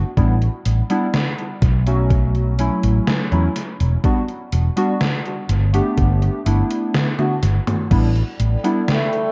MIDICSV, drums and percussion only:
0, 0, Header, 1, 2, 480
1, 0, Start_track
1, 0, Tempo, 967742
1, 85, Time_signature, 4, 2, 24, 8
1, 4622, End_track
2, 0, Start_track
2, 0, Title_t, "Drums"
2, 84, Note_on_c, 9, 42, 49
2, 85, Note_on_c, 9, 36, 108
2, 134, Note_off_c, 9, 36, 0
2, 134, Note_off_c, 9, 42, 0
2, 206, Note_on_c, 9, 42, 27
2, 256, Note_off_c, 9, 42, 0
2, 324, Note_on_c, 9, 42, 89
2, 374, Note_off_c, 9, 42, 0
2, 446, Note_on_c, 9, 42, 49
2, 496, Note_off_c, 9, 42, 0
2, 564, Note_on_c, 9, 38, 108
2, 564, Note_on_c, 9, 42, 49
2, 614, Note_off_c, 9, 38, 0
2, 614, Note_off_c, 9, 42, 0
2, 687, Note_on_c, 9, 42, 25
2, 736, Note_off_c, 9, 42, 0
2, 804, Note_on_c, 9, 36, 102
2, 804, Note_on_c, 9, 42, 85
2, 854, Note_off_c, 9, 36, 0
2, 854, Note_off_c, 9, 42, 0
2, 926, Note_on_c, 9, 42, 50
2, 976, Note_off_c, 9, 42, 0
2, 1044, Note_on_c, 9, 36, 105
2, 1044, Note_on_c, 9, 42, 53
2, 1094, Note_off_c, 9, 36, 0
2, 1094, Note_off_c, 9, 42, 0
2, 1166, Note_on_c, 9, 42, 26
2, 1215, Note_off_c, 9, 42, 0
2, 1284, Note_on_c, 9, 42, 87
2, 1334, Note_off_c, 9, 42, 0
2, 1406, Note_on_c, 9, 42, 49
2, 1456, Note_off_c, 9, 42, 0
2, 1525, Note_on_c, 9, 38, 108
2, 1525, Note_on_c, 9, 42, 49
2, 1574, Note_off_c, 9, 38, 0
2, 1574, Note_off_c, 9, 42, 0
2, 1646, Note_on_c, 9, 42, 25
2, 1696, Note_off_c, 9, 42, 0
2, 1765, Note_on_c, 9, 42, 91
2, 1815, Note_off_c, 9, 42, 0
2, 1886, Note_on_c, 9, 42, 51
2, 1936, Note_off_c, 9, 42, 0
2, 2004, Note_on_c, 9, 36, 113
2, 2004, Note_on_c, 9, 42, 52
2, 2053, Note_off_c, 9, 36, 0
2, 2054, Note_off_c, 9, 42, 0
2, 2126, Note_on_c, 9, 42, 27
2, 2175, Note_off_c, 9, 42, 0
2, 2244, Note_on_c, 9, 42, 90
2, 2294, Note_off_c, 9, 42, 0
2, 2365, Note_on_c, 9, 42, 53
2, 2415, Note_off_c, 9, 42, 0
2, 2484, Note_on_c, 9, 38, 112
2, 2484, Note_on_c, 9, 42, 53
2, 2533, Note_off_c, 9, 38, 0
2, 2533, Note_off_c, 9, 42, 0
2, 2606, Note_on_c, 9, 42, 27
2, 2656, Note_off_c, 9, 42, 0
2, 2724, Note_on_c, 9, 42, 92
2, 2773, Note_off_c, 9, 42, 0
2, 2846, Note_on_c, 9, 42, 53
2, 2895, Note_off_c, 9, 42, 0
2, 2964, Note_on_c, 9, 36, 108
2, 2964, Note_on_c, 9, 42, 54
2, 3013, Note_off_c, 9, 36, 0
2, 3013, Note_off_c, 9, 42, 0
2, 3086, Note_on_c, 9, 42, 27
2, 3135, Note_off_c, 9, 42, 0
2, 3205, Note_on_c, 9, 42, 90
2, 3254, Note_off_c, 9, 42, 0
2, 3325, Note_on_c, 9, 42, 51
2, 3375, Note_off_c, 9, 42, 0
2, 3444, Note_on_c, 9, 38, 108
2, 3444, Note_on_c, 9, 42, 52
2, 3444, Note_on_c, 9, 48, 60
2, 3494, Note_off_c, 9, 38, 0
2, 3494, Note_off_c, 9, 42, 0
2, 3494, Note_off_c, 9, 48, 0
2, 3565, Note_on_c, 9, 42, 25
2, 3565, Note_on_c, 9, 48, 59
2, 3615, Note_off_c, 9, 42, 0
2, 3615, Note_off_c, 9, 48, 0
2, 3684, Note_on_c, 9, 42, 91
2, 3734, Note_off_c, 9, 42, 0
2, 3806, Note_on_c, 9, 42, 53
2, 3806, Note_on_c, 9, 45, 81
2, 3856, Note_off_c, 9, 42, 0
2, 3856, Note_off_c, 9, 45, 0
2, 3924, Note_on_c, 9, 36, 116
2, 3924, Note_on_c, 9, 42, 54
2, 3924, Note_on_c, 9, 49, 75
2, 3974, Note_off_c, 9, 36, 0
2, 3974, Note_off_c, 9, 42, 0
2, 3974, Note_off_c, 9, 49, 0
2, 4046, Note_on_c, 9, 42, 27
2, 4095, Note_off_c, 9, 42, 0
2, 4165, Note_on_c, 9, 42, 96
2, 4214, Note_off_c, 9, 42, 0
2, 4287, Note_on_c, 9, 42, 54
2, 4337, Note_off_c, 9, 42, 0
2, 4405, Note_on_c, 9, 38, 117
2, 4405, Note_on_c, 9, 42, 55
2, 4455, Note_off_c, 9, 38, 0
2, 4455, Note_off_c, 9, 42, 0
2, 4527, Note_on_c, 9, 42, 26
2, 4577, Note_off_c, 9, 42, 0
2, 4622, End_track
0, 0, End_of_file